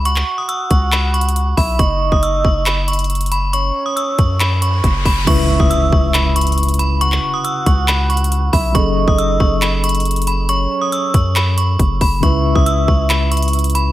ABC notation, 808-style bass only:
X:1
M:4/4
L:1/16
Q:1/4=138
K:C#m
V:1 name="808-style bass" clef=bass
C,,2 z4 C,,8 B,,,2 | F,,,3 F,,,3 F,,,8- F,,,2- | F,,,2 z4 F,,6 F,,,2 F,,,2 | C,,3 C,,3 C,,8- C,,2- |
C,,2 z4 C,,8 B,,,2 | F,,,3 F,,,3 F,,,8- F,,,2- | F,,,2 z4 F,,6 F,,,2 F,,,2 | C,,3 C,,3 C,,8- C,,2 |]